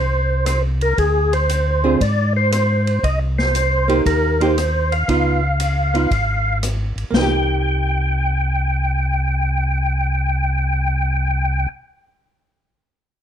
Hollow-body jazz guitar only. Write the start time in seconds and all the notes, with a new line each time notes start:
1.84 D3 C4 F4 G#4
3.88 A#3 D#4 G4
4.41 A#3 D#4 G4
5.08 B3 D#4 F4
5.94 B3 D#4 F4
7.11 A#3
7.17 D#4
7.23 G4